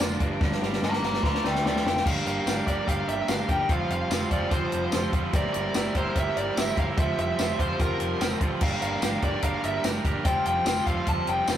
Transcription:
Already playing: D3 A#3 D4
0.00 F1 F3 A#3 D4 F4, snare
0.20 G1 G2 G3 A#3 D4, kick, closed hi-hat
0.41 G1 G2 G3 A#3 D4, kick, snare
0.52 snare
0.61 G1 G3 A#3 D4, snare
0.73 snare
0.82 G2 G3 A#3 D4 F5 A#5, snare
0.93 snare
1.02 G1 G3 A#3 D4 F5 A#5, snare
1.14 snare
1.23 D2 D3 F3 A3 D4 F5, kick, snare
1.27 A#5
1.35 snare
1.44 D2 A3 D5 G5, snare
1.55 snare
1.63 D2 F3 A3 D4 F4 D5, snare
1.67 G5
1.76 snare
1.84 F1 A3 D4, snare
1.88 G5
1.97 snare
2.05 G1 G3 A#3 D4 G4 A#4 F5, kick, crash
2.25 G1 F5, closed hi-hat
2.45 G1 G3 A#3 D4 G4 A#4, snare, closed hi-hat, tambourine
2.66 G1 G3 A#3 D4 G4 A#4 D5, kick, closed hi-hat
2.86 G1 G3 A#3 D4 G4 A#4 F5, kick, closed hi-hat
3.07 G1 E5, closed hi-hat
3.28 G1 G3 A#3 D4 G4 A#4 F5, snare, closed hi-hat, tambourine
3.48 G1 G3 A#3 D4 G4 A#4 G5, kick, closed hi-hat
3.69 F1 F3 G3 C4 F4 G4 C5 F5, kick, closed hi-hat
3.89 F1 F5, closed hi-hat
4.10 F1 F3 G3 C4 F4 G4 C5, snare, closed hi-hat, tambourine
4.31 F1 F3 G3 C4 F4 G4 C5 D5, kick, closed hi-hat
4.51 F1 F3 G3 C4 F4 G4 C5, kick, closed hi-hat
4.72 F1, closed hi-hat
4.92 F1 F3 G3 C4 F4 G4 C5, snare, closed hi-hat, tambourine
5.13 F1 F3 G3 C4 F4 G4 C5, kick, closed hi-hat
5.33 G1 G3 A#3 C4 E4 G4 A#4 D5, kick, closed hi-hat
5.54 G1 D5, closed hi-hat
5.74 G1 G3 A#3 C4 E4 G4 A#4, snare, closed hi-hat, tambourine
5.95 G1 G3 A#3 C4 E4 G4 A#4 C5, kick, closed hi-hat
6.15 G1 G3 A#3 C4 E4 G4 A#4 E5, kick, closed hi-hat
6.36 G1 D5, closed hi-hat
6.56 G1 G3 A#3 C4 E4 G4 A#4 E5, snare, closed hi-hat, tambourine
6.76 G1 G3 A#3 C4 E4 G4 A#4 F5, kick, closed hi-hat
6.97 F1 F3 G3 C4 F4 G4 C5 E5, kick, closed hi-hat
7.18 F1 E5, closed hi-hat
7.38 F1 F3 G3 C4 F4 G4 C5, snare, closed hi-hat, tambourine
7.58 F1 F3 G3 C4 F4 G4 C5, kick, closed hi-hat
7.79 F1 F3 G3 C4 F4 G4 A#4 C5, kick, closed hi-hat
8.00 F1, closed hi-hat
8.20 F1 F3 G3 C4 F4 G4 C5, snare, closed hi-hat, tambourine
8.41 A1 F3 G3 C4 F4 G4 C5, kick, closed hi-hat
8.61 G1 G3 A#3 D4 G4 A#4 F5, kick, crash
8.82 G1 F5, closed hi-hat
9.02 G1 G3 A#3 D4 G4 A#4, snare, closed hi-hat, tambourine
9.22 G1 G3 A#3 D4 G4 A#4 D5, kick, closed hi-hat
9.42 G1 G3 A#3 D4 G4 A#4 F5, kick, closed hi-hat
9.64 G1 E5, closed hi-hat
9.84 G1 G3 A#3 D4 G4 A#4, snare, closed hi-hat, tambourine
10.05 G1 G3 A#3 D4 G4 A#4, kick, closed hi-hat
10.25 F1 F3 G3 C4 F4 G4 C5 G5, kick, closed hi-hat
10.46 F1 G5, closed hi-hat
10.66 F1 F3 G3 C4 F4 G4 C5, snare, closed hi-hat, tambourine
10.86 F1 F3 G3 C4 F4 G4 C5 F5, kick, closed hi-hat
11.07 F1 F3 G3 C4 F4 G4 C5 A5, kick, closed hi-hat
11.27 F1 G5, closed hi-hat
11.47 F1 F3 G3 C4 F4 G4 C5, snare, closed hi-hat, tambourine

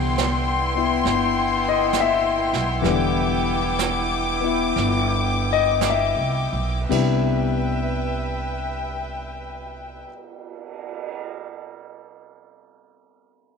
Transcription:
Already playing: C2 D3 E3 G3 B3 E4 D5 G5 C6
0.18 snare, hi-hat pedal
0.75 B3 E4
1.05 G1, brush sweep, snare
1.69 D#5
1.93 snare, hi-hat pedal
2.00 E5
2.53 B1, snare
2.82 E1 E3 G3 B3 D6, brush sweep, snare
2.86 D3
3.79 snare, hi-hat pedal
4.41 B3 E4
4.76 G1, brush sweep, snare
5.53 D#5
5.81 snare, hi-hat pedal
5.90 E5
6.17 C2
6.53 B1
6.88 C2 C3 G3 B3 D4 E4 B4 E5 G5, kick, crash
7.66 cymbal swell

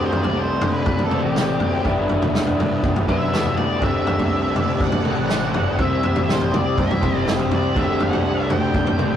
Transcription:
Already playing: D2 A2 D3 G3 C4
0.06 C5
0.12 floor tom
0.23 C2 D5, floor tom
0.39 C5
0.61 D3, floor tom, mid tom
0.72 B4
0.86 D2, kick, floor tom
0.99 floor tom
1.04 A4
1.11 D2 A2 D3 G3 C4, mid tom
1.22 A1 G4
1.35 D2 A2 D3 G3 C4, snare, mid tom
1.60 D2, floor tom
1.85 G1 G2 D3 G3 B3 D4 E4, kick, floor tom
2.09 floor tom
2.22 E1, floor tom, mid tom
2.35 snare
2.47 floor tom
2.59 G2, floor tom, mid tom
2.83 G1, kick, floor tom
2.96 floor tom
3.08 F#2 G2 D3 G3 B3 D4 E4 E5, kick, floor tom, mid tom
3.32 E2 G2 D3 G3 B3 D4 E4, snare, mid tom
3.45 floor tom
3.57 D2 D5, floor tom
3.82 D1 D2 A2 D3 G3 C4 A4 D5 E5, kick, floor tom
4.07 floor tom
4.19 C2, floor tom
4.56 D2, floor tom, mid tom
4.80 D1 F#5, kick, floor tom
4.92 floor tom
5.04 D2 A2 D3 G3 C4, mid tom
5.18 A1
5.29 D2 A2 D3 G3 C4, snare, mid tom
5.54 G1, floor tom
5.78 C2 C3 E3 G3 C4 E4 G4 C5 E5, kick, floor tom
6.03 floor tom
6.16 A1, floor tom, mid tom
6.29 C5, snare
6.41 floor tom
6.52 C2 D5, floor tom, mid tom
6.78 C2 E5, kick, floor tom
6.91 floor tom
7.02 C3 G3 C4 E4 G4 C5, kick, floor tom, mid tom
7.14 G1
7.26 C3 G3 C4 E4 G4 C5, snare, mid tom
7.39 floor tom
7.51 C2, floor tom
7.55 D5
7.75 D1 D2 A2 D3 G3 A3 C4 D4 E5, kick, floor tom
8.00 F#5, floor tom
8.13 C2, floor tom
8.50 D2 G5, floor tom, mid tom
8.74 D1, kick, floor tom
8.87 floor tom
8.98 D2 A2 D3 G3 C4, mid tom
9.12 A1

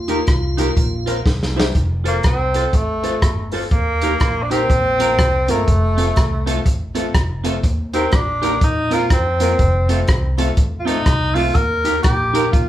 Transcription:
Already playing: D#2 F4
0.08 A#3 D#4 G4 A#4, closed hi-hat
0.27 C2, kick, cross-stick, closed hi-hat
0.57 A#3 D#4 G4 A#4, closed hi-hat
0.76 A#1 A#4 C5, kick, closed hi-hat
1.06 C4 F4 A#4 C5, closed hi-hat
1.26 C2, kick, snare
1.43 snare
1.56 C4 E4 G4 C5, snare
1.75 F1, kick, closed hi-hat
2.04 A#3 C4 F4 A4 C5, closed hi-hat
2.23 C2 C4, muted clean electric guitar stroke, kick, cross-stick, closed hi-hat
2.54 C4 F4 A4 C5, closed hi-hat
2.73 A1 A3, kick, closed hi-hat
3.03 C4 F4 A4 C5, closed hi-hat
3.22 G1, kick, cross-stick, closed hi-hat
3.52 C4 F4 A4 C5, open hi-hat
3.71 D#2 A#3, kick, closed hi-hat
4.01 A#3 D#4 G4 A#4, closed hi-hat
4.20 A#1, muted clean electric guitar stroke, kick, cross-stick, closed hi-hat
4.43 D4
4.50 A#3 C4 D#4 G4 A#4, closed hi-hat
4.70 A#1 F4 A#4, kick, closed hi-hat
4.99 A#3 C4 F4 A#4, closed hi-hat
5.18 C2, kick, cross-stick, closed hi-hat
5.48 G1 A3 A#3 C4 F4 A#4, closed hi-hat
5.68 F1, kick, closed hi-hat
5.97 A3 C4 F4 A4, closed hi-hat
6.16 C2, muted clean electric guitar stroke, kick, cross-stick, closed hi-hat
6.46 A3 C4 F4 A4, closed hi-hat
6.66 A1, kick, closed hi-hat
6.95 A3 C4 F4 A4, closed hi-hat
7.14 F1, kick, cross-stick, closed hi-hat
7.44 A3 C4 F4 A4, closed hi-hat
7.63 D#2, kick, closed hi-hat
7.94 A#3 C4 D#4 G4 A#4, closed hi-hat
8.12 A#1 D4, muted clean electric guitar stroke, kick, cross-stick, closed hi-hat
8.42 A#3 D#4 G4 A#4, closed hi-hat
8.61 A#1 D#4 F4 A#4, kick, closed hi-hat
8.90 A#3 C4 F4 A#4, closed hi-hat
9.10 F2 C4, kick, cross-stick, closed hi-hat
9.40 A#3 C4 F4 A#4, closed hi-hat
9.59 F1, kick, closed hi-hat
9.89 A3 C4 F4 A4, closed hi-hat
10.08 C2, muted clean electric guitar stroke, kick, cross-stick, closed hi-hat
10.38 A3 C4 F4 A4, closed hi-hat
10.57 A1, kick, closed hi-hat
10.80 F4
10.85 A3 C4 D#4 F4 A4, closed hi-hat
11.06 C2, kick, cross-stick, closed hi-hat
11.35 A3 C4 F4 A4, open hi-hat
11.55 D#2 A#4, kick, closed hi-hat
11.84 A#3 D#4 G4 A#4, closed hi-hat
12.03 A#1 G4, muted clean electric guitar stroke, kick, cross-stick, closed hi-hat
12.33 A#3 D#4 G4 A#4, closed hi-hat
12.52 A#1 F4 A#4, kick, closed hi-hat

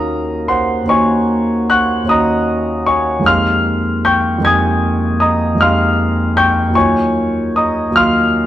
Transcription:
Already playing: D#2 A#3 C#4 D#4 F#4 A#4 F5 A#5
0.48 C5 F#5 C6
0.82 D#2 A#3 C#4
0.88 D#4 F#4 C#5 G#5 C#6
1.70 F#5 C#6 F#6
2.03 D#2 A#3 C#4
2.09 D#4 F#4 D#5 A#5 D#6
2.86 C#5 G#5 C#6
3.19 F2 G#3 A#3
3.24 D#4 G4 F5 F6
3.28 C6
4.05 G5 C#6 G6
4.38 F2 G#3 A#3
4.43 D#4 G4 G#5 D#6 G#6
5.20 D#5 A#5 D#6
5.55 F2 G#3 A#3
5.59 D#4 G4 F5 C6 F6
6.37 G5 C#6 G6
6.68 D#2 F#3
6.73 A#3 D#4 F4 G#5 C#6
6.77 C#5
7.56 D#5 A#5 D#6
7.89 D#2 F#3 A#3
7.94 D#4 F4 F5 C6 F6

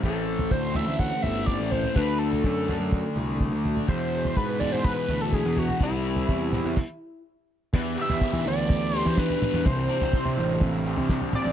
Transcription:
Already playing: C4 E4 C5
0.03 A1 A2 E3 A3 A4, kick, floor tom
0.39 floor tom
0.51 D2 C5, kick
0.75 A2 E3 A3 E5, floor tom
0.88 D2
0.99 F#5, kick, floor tom
1.22 G1 E5, floor tom
1.46 D5, kick
1.60 A1
1.71 C5, floor tom
1.84 floor tom
1.95 D2 D3 F#3 A3 D4 A4 B4 D5, kick, floor tom
2.19 A4
2.33 floor tom
2.44 F#2, kick
2.67 D3 A3 D4, floor tom
2.80 F#2
2.92 kick, floor tom
3.16 C2, floor tom
3.41 kick
3.52 D2
3.65 floor tom
3.77 floor tom
3.88 E2 B2 E3 G#3 G#4 C5 B5, kick, floor tom
4.25 floor tom
4.36 G#2 B4, kick
4.60 E2 B2 E3 D5, floor tom
4.72 G#2 C5
4.84 B4, kick, floor tom
5.08 D2, floor tom
5.21 A4
5.33 G#4, kick
5.46 E2
5.57 F#4, floor tom
5.69 floor tom
5.80 C2 C3 G3 C4 E4 G4 C5, kick, floor tom
5.92 floor tom
6.16 floor tom
6.29 E2, kick
6.53 C3 G3 C4, floor tom, mid tom
6.65 E2
6.77 kick, crash
7.73 E2 E3 B3 D4 G4 B4, kick, floor tom, crash
7.98 G4 E5
8.10 E2, floor tom
8.21 B3, kick
8.33 E3, floor tom
8.45 D2 E3 D5
8.70 B3, kick, floor tom
8.94 G4
8.98 C5
9.06 E3, floor tom
9.17 D4 B4, kick, snare
9.30 floor tom
9.42 B3, floor tom, mid tom
9.54 E2, mid tom
9.66 C2 C3 C4 G4 C5, kick, floor tom
9.89 G4
10.01 C2, floor tom
10.13 C4, kick
10.25 C3, floor tom
10.37 A1 E3
10.61 C4, kick, floor tom
10.86 G4
10.97 C3, floor tom
11.09 D4, kick, snare
11.21 floor tom
11.33 C4 D5, floor tom, mid tom
11.45 A1, mid tom

